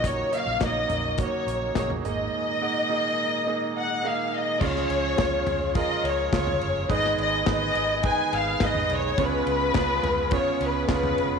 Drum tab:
CC |----------------|----------------|x---------------|----------------|
RD |----------------|----------------|--x-x-x-x-x-x-x-|x-x-x-x-x-x-x-x-|
HH |x-x-x-x-x-x-x-x-|----------------|----------------|----------------|
SD |----o-------o---|----------------|-o--o-------o---|-o--o-------o---|
FT |------o------o--|----------------|------o------o--|-------------o--|
BD |o---o---o---o---|----------------|o---o---o---o---|o---o---o---o---|

CC |----------------|
RD |x-x-x-x-x-x-x-x-|
HH |----------------|
SD |----o-------o---|
FT |------o------o--|
BD |o---o---o---o---|